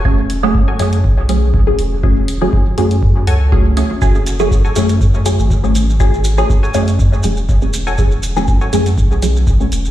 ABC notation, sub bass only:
X:1
M:4/4
L:1/16
Q:"Swing 16ths" 1/4=121
K:F#m
V:1 name="Sub bass" clef=bass
E,,,4 z2 F,, z B,,,4 z2 E,,,2- | E,,,3 z3 F,,4 C,,4 z2 | F,,,4- F,,, z F,,4 z G,,,4- G,,,- | G,,,3 z3 F,,3 z E,,,6- |
E,,,4 z2 F,, z B,,,4 z2 E,,,2 |]